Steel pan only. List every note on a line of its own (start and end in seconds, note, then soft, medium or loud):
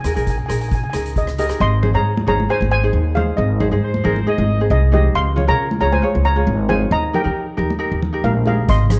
0.08 0.13 G#5 soft
0.14 0.20 G#5 medium
0.22 0.28 G#5 soft
0.30 0.36 G#5 medium
0.38 0.43 G#5 soft
0.46 0.51 G#5 medium
0.53 0.59 G#5 soft
0.61 0.67 G#5 medium
0.69 0.74 G#5 soft
0.75 0.81 G#5 medium
0.84 0.89 G#5 medium
0.90 0.96 G#5 medium
0.97 1.03 G#5 medium
1.17 1.37 G#4 medium
1.17 1.38 D#5 medium
1.39 1.59 G4 medium
1.39 1.60 D#5 medium
1.61 1.92 D#5 medium
1.61 1.96 C6 loud
1.95 2.25 C#5 medium
1.95 2.27 A#5 medium
2.28 2.48 C#5 medium
2.28 2.51 A#5 medium
2.50 2.70 C5 medium
2.50 2.70 G#5 medium
2.71 3.13 C5 medium
2.71 3.13 G#5 medium
3.15 3.36 G#4 medium
3.15 3.38 F5 medium
3.37 3.79 G#4 medium
3.37 3.79 D#5 medium
4.71 4.92 G#4 medium
4.71 4.92 D#5 medium
4.94 5.04 G4 medium
4.94 5.04 D#5 medium
5.15 5.47 F5 medium
5.15 5.50 C6 loud
5.49 5.79 C#5 medium
5.49 5.79 A#5 medium
5.81 5.92 C#5 medium
5.81 5.93 A#5 loud
5.92 6.23 C5 medium
5.92 6.26 G#5 medium
6.25 6.67 C#5 medium
6.25 6.66 A#5 medium
6.69 6.90 C5 medium
6.69 6.92 G#5 medium
6.92 7.13 D#5 medium
6.92 7.13 A#5 loud
7.15 7.99 A#4 medium
7.15 7.99 G5 medium
8.24 8.45 A#4 medium
8.24 8.46 F5 medium
8.46 8.67 G#4 medium
8.46 8.70 F5 medium
8.69 8.99 D#5 medium
8.69 8.99 C6 loud